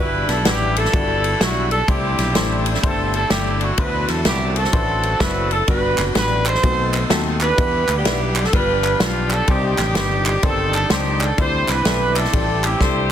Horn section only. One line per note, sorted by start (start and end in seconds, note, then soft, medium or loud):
0.00 0.76 D4 medium
0.00 0.75 E4 medium
0.00 0.29 B4 loud
0.29 0.46 A4 medium
0.46 0.76 G4 loud
0.77 1.67 D4 medium
0.77 1.67 E4 medium
0.77 1.41 A4 loud
1.41 1.71 F#4 medium
1.71 1.87 A4 medium
1.89 2.80 D4 medium
1.89 2.80 E4 medium
1.89 2.66 G4 medium
2.84 3.74 D4 medium
2.84 3.74 E4 medium
2.84 3.12 A4 medium
3.15 3.30 A4 loud
3.32 3.59 G4 medium
3.62 3.77 F#4 medium
3.78 4.69 E4 medium
3.78 4.56 F#4 medium
3.78 4.09 B4 loud
4.09 4.26 A4 medium
4.26 4.54 G4 loud
4.57 5.47 C4 medium
4.57 5.47 F#4 medium
4.57 5.21 A4 loud
5.21 5.51 B4 loud
5.51 5.68 A4 loud
5.68 6.59 D4 medium
5.68 6.59 F#4 medium
5.68 6.03 B4 loud
6.16 6.44 B4 loud
6.46 7.37 D#4 medium
6.46 7.37 A4 medium
6.46 7.04 C5 loud
7.41 7.95 D4 medium
7.41 7.96 G4 medium
7.41 7.93 B4 loud
7.97 8.49 B3 medium
7.97 8.49 D4 medium
7.97 8.44 G4 loud
8.45 8.53 A4 medium
8.53 9.44 D4 medium
8.53 9.00 F4 medium
8.53 9.01 B4 loud
9.01 9.29 F4 medium
9.32 9.48 A4 loud
9.48 10.39 D4 medium
9.48 10.39 D#4 medium
9.48 10.44 G4 medium
10.43 11.34 D4 medium
10.43 11.34 D#4 medium
10.43 10.73 A4 loud
10.74 10.90 A4 loud
10.92 11.19 G4 loud
11.23 11.39 A4 loud
11.39 11.68 E4 medium
11.39 11.68 G4 medium
11.39 11.69 C5 loud
11.69 12.16 E4 medium
11.69 12.60 G4 medium
11.69 12.17 B4 loud
12.17 12.63 C4 medium
12.17 12.63 E4 medium
12.17 12.64 A4 loud
12.64 13.12 C4 medium
12.64 13.12 E4 medium
12.64 13.11 G4 loud
12.81 13.09 C5 medium